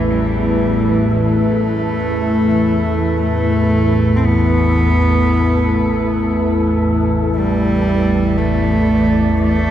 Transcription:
Already playing: synth drone A1 E2, cello E3, analog synth pad A3 E4 B4, synth texture A3 A4
0.10 cello G3
1.15 cello A3
3.21 cello A3
4.16 cello C4
4.24 cello B3
7.33 cello G3, synth texture D5
8.38 cello A3
9.41 cello A3

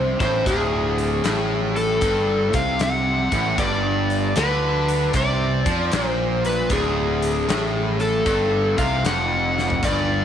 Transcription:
Already playing: fingered electric bass C2, distorted electric guitar C3, electric slide guitar C5
0.20 fingered electric bass A1, distorted electric guitar A2, electric slide guitar C5, kick, closed hi-hat
0.46 fingered electric bass D1, distorted electric guitar D2, electric slide guitar G#4, kick, closed hi-hat
0.98 closed hi-hat
1.24 fingered electric bass A1, distorted electric guitar A2, snare, closed hi-hat
1.76 electric slide guitar A4, closed hi-hat
2.01 fingered electric bass G1, distorted electric guitar G2, kick, closed hi-hat
2.53 fingered electric bass C2, distorted electric guitar C3, electric slide guitar F5, kick, closed hi-hat
2.79 electric slide guitar F#5, snare, closed hi-hat
3.32 fingered electric bass A1, distorted electric guitar A2, kick, closed hi-hat
3.58 fingered electric bass G1, distorted electric guitar G2, electric slide guitar D5, kick, closed hi-hat
4.10 closed hi-hat
4.36 fingered electric bass D2, distorted electric guitar D3, electric slide guitar B4, snare, closed hi-hat
4.89 closed hi-hat
5.13 fingered electric bass C2, distorted electric guitar C3, electric slide guitar D5, kick, closed hi-hat
5.66 fingered electric bass F2, distorted electric guitar F3, kick, closed hi-hat
5.92 fingered electric bass A#1, distorted electric guitar A#2, snare, closed hi-hat
6.07 electric slide guitar C5
6.45 electric slide guitar B4, closed hi-hat
6.70 fingered electric bass D1, distorted electric guitar D2, electric slide guitar G#4, kick, closed hi-hat
7.22 closed hi-hat
7.48 fingered electric bass A1, distorted electric guitar A2, snare, closed hi-hat
8.00 electric slide guitar A4, closed hi-hat
8.26 fingered electric bass G1, distorted electric guitar G2, kick, closed hi-hat
8.78 fingered electric bass C2, distorted electric guitar C3, electric slide guitar F5, kick, closed hi-hat
9.04 fingered electric bass F1, distorted electric guitar F2, electric slide guitar F#5, snare, closed hi-hat
9.58 snare
9.70 floor tom
9.83 fingered electric bass G1, distorted electric guitar G2, electric slide guitar D5, kick, closed hi-hat

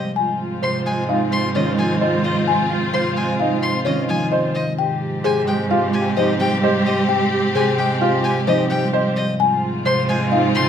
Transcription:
Already playing: harp C3 F3 G3 G#3 C4, violin D#5
0.16 cello G#2, string section C4 F4, clarinet F4, marimba G#5
0.41 clarinet F4
0.62 harp C3, clarinet F4, grand piano C5, marimba C5, violin C6
0.86 harp G#3, clarinet F4, violin G#5
1.09 harp C4, grand piano D#4, clarinet F4, marimba F5
1.32 clarinet F4, violin C6
1.55 harp D#3, grand piano C#4, clarinet F4, marimba C#5, violin D#5
1.78 harp F3, clarinet F4, violin G#5
2.01 clarinet F4, grand piano C5, marimba D#5
2.24 clarinet F4, violin D#5
2.47 clarinet F4, marimba G#5
2.70 clarinet F4
2.93 harp C3, clarinet F4, marimba C5, grand piano C5, violin C6
3.16 harp G#3, clarinet F4, violin G#5
3.39 harp C4, grand piano D#4, clarinet F4, marimba F5
3.62 clarinet F4, violin C6
3.85 harp D#3, grand piano C#4, clarinet F4, marimba C#5, violin D#5
4.09 harp F3, clarinet F4, violin G#5
4.32 clarinet F4, grand piano C5, marimba D#5
4.55 violin D#5
4.78 cello G#2, string section C4 G4, clarinet G4, marimba G5
5.01 clarinet G4
5.24 harp C3, clarinet G4, marimba G#4, grand piano C5, violin G#5
5.47 harp G#3, clarinet G4, violin G5
5.70 harp C4, grand piano F4, clarinet G4, marimba F5
5.93 clarinet G4, violin G#5
6.16 harp F3, grand piano D#4, clarinet G4, marimba C5, violin D#5
6.39 harp G3, clarinet G4, violin G5
6.63 clarinet G4, grand piano C5, marimba D#5
6.86 clarinet G4, violin D#5
7.08 clarinet G4, marimba G5
7.32 clarinet G4
7.54 harp C3, clarinet G4, marimba G#4, grand piano C5, violin G#5
7.78 harp G#3, clarinet G4, violin G5
8.01 harp C4, grand piano F4, clarinet G4, marimba F5
8.24 clarinet G4, violin G#5
8.47 harp F3, grand piano D#4, clarinet G4, marimba C5, violin D#5
8.70 harp G3, clarinet G4, violin G5
8.93 clarinet G4, grand piano C5, marimba D#5
9.16 violin D#5
9.39 cello G#2, string section C4 F4, clarinet F4, marimba G#5
9.64 clarinet F4
9.85 harp C3, clarinet F4, grand piano C5, marimba C5, violin C6
10.09 harp G#3, clarinet F4, violin G#5
10.32 harp C4, grand piano D#4, clarinet F4, marimba F5
10.55 harp C#3, clarinet F4, violin C6

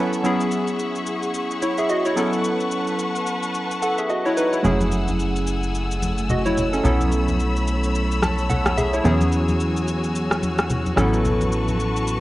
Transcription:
Already playing: synth keys F#3 B3 C#4 E4 A4 B4 F#5 A5 B5, string section A4 E5 B5 C#6
0.13 shaker
0.23 synth keys F#3 B3 C#4 E4 G#4, string section G#4 F#5 C#6, shaker
0.40 shaker
0.51 shaker
0.68 shaker
0.79 shaker
0.96 shaker
1.07 shaker
1.23 shaker
1.34 shaker
1.51 shaker
1.62 synth keys E4 C#5, shaker
1.78 synth keys G#4 E5, shaker
1.89 synth keys F#4 D#5, shaker
2.05 synth keys E4 C#5, shaker
2.16 synth keys F#3 B3 C#4 E4 A4, string section B4 A5, shaker
2.33 shaker
2.44 shaker
2.60 shaker
2.71 shaker
2.87 shaker
2.99 shaker
3.16 shaker
3.27 shaker
3.43 shaker
3.54 shaker
3.71 shaker
3.82 synth keys A4 F#5, shaker
3.98 synth keys G#4 E5, shaker
4.09 synth keys F#4 D#5, shaker
4.25 synth keys E4 C#5, shaker
4.37 synth keys D#4 B4, shaker
4.53 synth keys E4 C#5, shaker
4.63 analog synth bass F#1, synth keys F#3 A3 C#4 E4 G#4, string section A3 G#5 E6, low conga, shaker
4.81 high conga, shaker
4.92 shaker
5.08 high conga, shaker
5.20 shaker
5.36 shaker
5.47 shaker
5.63 shaker
5.75 shaker
5.91 shaker
6.02 high conga, shaker
6.18 shaker
6.30 synth keys F#4 D#5, low conga, shaker
6.46 synth keys E4 C#5, high conga, shaker
6.58 low conga, shaker
6.73 synth keys C#4 A4, shaker
6.83 analog synth bass B1, synth keys F#3 B3 C#4 E4 A4, string section C#5 B5, low conga, shaker
7.01 high conga, shaker
7.12 shaker
7.28 high conga, shaker
7.40 shaker
7.56 shaker
7.67 shaker
7.83 shaker
7.95 shaker
8.12 shaker
8.22 synth keys A5, cross-stick, high conga, shaker
8.38 shaker
8.50 synth keys A4 F#5, low conga, shaker
8.66 cross-stick, high conga, shaker
8.78 synth keys G#4 E5, low conga, shaker
8.93 synth keys E4 C#5, shaker
9.04 analog synth bass E2, synth keys F#3 B3 C#4 E4 G#4, string section F#4 G#5, low conga, shaker
9.21 high conga, shaker
9.32 shaker
9.48 high conga, shaker
9.60 shaker
9.76 shaker
9.88 shaker
10.04 shaker
10.15 shaker
10.31 cross-stick, shaker
10.43 high conga, shaker
10.58 cross-stick, shaker
10.70 low conga, shaker
10.86 high conga, shaker
10.96 analog synth bass A1, synth keys F#3 B3 C#4 E4 A4, string section B4 A5 C#6, cross-stick, low conga, shaker
11.14 shaker
11.25 low conga, shaker
11.41 high conga, shaker
11.52 shaker
11.68 high conga, shaker
11.80 shaker
11.97 shaker
12.08 shaker

